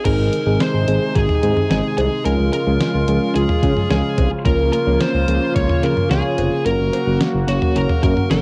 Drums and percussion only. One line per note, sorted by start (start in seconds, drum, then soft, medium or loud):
0.05 kick loud
0.05 closed hi-hat medium
0.05 crash loud
0.33 closed hi-hat medium
0.60 snare loud
0.60 closed hi-hat medium
0.88 closed hi-hat medium
1.15 kick loud
1.15 closed hi-hat medium
1.29 mid tom medium
1.43 closed hi-hat medium
1.57 mid tom medium
1.70 snare loud
1.70 closed hi-hat medium
1.98 closed hi-hat medium
1.98 cowbell medium
2.25 closed hi-hat medium
2.53 closed hi-hat medium
2.80 snare loud
2.80 closed hi-hat medium
3.08 closed hi-hat medium
3.36 closed hi-hat medium
3.49 mid tom loud
3.63 kick loud
3.63 closed hi-hat medium
3.77 mid tom medium
3.90 snare loud
3.90 closed hi-hat medium
4.18 kick loud
4.18 closed hi-hat medium
4.18 cowbell medium
4.46 kick loud
4.46 closed hi-hat medium
4.73 closed hi-hat medium
5.01 snare loud
5.01 closed hi-hat medium
5.28 closed hi-hat medium
5.56 kick loud
5.56 closed hi-hat medium
5.69 mid tom loud
5.83 closed hi-hat medium
5.97 mid tom medium
6.11 snare loud
6.11 closed hi-hat medium
6.38 closed hi-hat medium
6.38 cowbell medium
6.66 closed hi-hat medium
6.93 closed hi-hat medium
6.93 cowbell medium
7.21 snare loud
7.21 closed hi-hat medium
7.48 closed hi-hat medium
7.62 mid tom loud
7.76 closed hi-hat medium
7.90 mid tom loud
8.03 kick loud
8.03 closed hi-hat medium
8.17 mid tom medium
8.31 snare loud
8.31 closed hi-hat medium